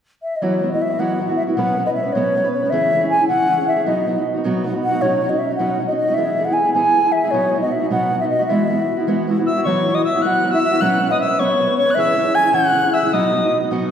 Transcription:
0.23 E5
0.36 D#5
0.42 E3 F#3 B3 E4 F#4 C#5
0.62 F#3 B3 E4 F#4
0.72 B3 E4 F#4 D#5
0.82 E5
0.90 B3 E4 F#4
0.99 E3 F#3 B3 E4 F#4 F#5
1.18 F#3 B3 E4 F#4
1.28 E4 F#4 F#5
1.32 B3
1.36 E5
1.47 B3 E4 F#4
1.56 B2 F#3 B3 C#4 B4 F#5
1.77 F#3 B3 C#4 B4
1.86 C#4 B4 D#5
1.90 B3 E5
2.04 B3 C#4 B4
2.13 B2 F#3 B3 C#5
2.17 C#4 B4
2.35 F#3 B3 C#4 B4
2.44 B3 C#4 B4
2.52 C#5
2.62 B3 C#4 B4
2.70 C#3 E3 C#4 E4 G#4 E5
2.92 E3 C#4 E4 G#4
3.01 C#4 E4 G#4
3.10 G#5
3.19 C#4 E4 G#4
3.28 C#3 E3 C#4 E4 G#4 F#5
3.49 E3 C#4 E4 G#4
3.58 C#4 E4 G#4
3.68 E5
3.76 C#4 E4 G#4
3.86 B2 F#3 B3 D#4 F#4 D#5
4.07 F#3 B3 D#4 F#4
4.16 B3 D#4 F#4
4.34 B3 D#4 F#4
4.44 B2 F#3 B3 D#4 F#4
4.64 F#3 B3 D#4 F#4
4.74 B3 D#4 F#4
4.84 F#5
4.92 B3 D#4 F#4
5.01 B2 F#3 C#4 D#4 F#4 C#5
5.22 F#3 C#4 D#4 F#4
5.29 D#4 F#4 D#5
5.33 C#4
5.39 E5
5.49 C#4 D#4 F#4
5.56 B2 F#3 F#5
5.60 C#4 D#4 F#4
5.79 F#3 C#4 D#4 F#4
5.87 D#4 F#4 D#5
5.92 C#4 D#5
6.08 C#4 D#4 F#4
6.14 E3 B3 E5
6.18 E4 G#4
6.37 E3 B3 E4
6.41 G#4
6.45 E4 G#4 F#5
6.50 B3 G#5
6.65 B3 E4 G#4
6.74 E3 B3 E4 G#4 G#5
6.95 E3 B3 E4 G#4
7.04 B3 E4 G#4
7.12 E5
7.24 B3 E4 G#4
7.31 B2 F#3 B3 D#4 F#4 C#5
7.55 F#3 B3 D#4 F#4
7.61 F#4 D#5
7.65 B3 D#4
7.72 E5
7.80 B3 D#4 F#4
7.90 B2 F#3 B3 D#4 F#4 F#5
8.11 F#3 B3 D#4 F#4
8.20 D#4 F#4 E5
8.25 B3
8.29 D#5
8.39 B3 D#4 F#4
8.46 E3 G#3 B3 E5
8.51 E4 F#4
8.69 G#3 B3 E4 F#4
8.77 E4 F#4
8.81 B3
8.97 B3 E4 F#4
9.07 E3 G#3 B3 E4 F#4
9.27 G#3 B3 E4 F#4
9.38 B3 E4 F#4
9.46 E5 E6
9.57 B3 E4 F#4
9.64 E3 F#3 B3 E4 C#5 C#6
9.68 F#4
9.86 F#3 B3 E4 F#4
9.95 E4 F#4 D#5 D#6
9.99 B3
10.04 E5 E6
10.14 B3 E4 F#4
10.22 E3 F#3 B3 E4 F#5 F#6
10.26 F#4
10.43 F#3 B3 E4 F#4
10.52 B3 E4 F#4 E5 E6
10.63 E5
10.71 B3 E4 F#4
10.80 B2 F#3 B3 C#4 B4 F#5 F#6
11.00 F#3 B3 C#4 B4
11.10 B3 C#4 B4 D#5 D#6
11.20 E5 E6
11.28 B3 C#4 B4
11.39 B2 F#3 B3 C#4 B4 C#5 C#6
11.57 F#3 B3 C#4 B4
11.67 B3 C#4 B4
11.77 C#5 C#6
11.86 B3 C#4 B4
11.90 F#6
11.95 C#3 E3 C#4 E4 G#4 E5 F#6
12.00 E6
12.16 E3 C#4 E4 G#4
12.24 C#4 E4 G#4
12.35 G#5 G#6
12.43 C#4 E4 G#4
12.53 C#3 E3 C#4 E4 G#4 F#5 F#6
12.73 E3 C#4 E4 G#4
12.83 C#4 E4 G#4
12.93 E5 E6
13.03 C#4 E4 G#4 E5
13.12 B2 F#3 B3 D#4 F#4 D#5 D#6
13.33 F#3 B3 D#4 F#4
13.43 B3 D#4 F#4
13.60 B3 D#4 F#4
13.70 B2 F#3 B3 D#4 F#4

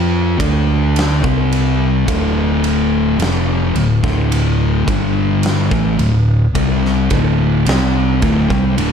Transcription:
Already playing: F2 F3 C4 F4
0.39 D2 D3 A3 D4, kick, ride
0.96 snare, ride
1.23 C2 C3 G3 C4, kick
1.52 ride
2.07 D1 D2 A2 D3, kick, ride
2.64 ride
3.18 F1 F2 C3 F3, snare, ride
3.75 D1 D2 A2, ride
4.02 D1 D2 A2 D3, kick
4.07 snare
4.32 ride
4.86 G1 G2 D3 G3, kick, ride
5.43 snare, ride
5.71 A1 A2 E3, kick
5.98 D1 D2 A2, ride
6.54 C2 C3 G3 C4, kick, ride
6.85 snare
7.10 D1 D2 A2 D3, kick, ride
7.66 C2 C3 G3 C4, snare, ride
8.22 D1 D2 A2, kick, ride
8.49 C2 C3 G3, kick
8.77 D1 D2 A2 D3, ride

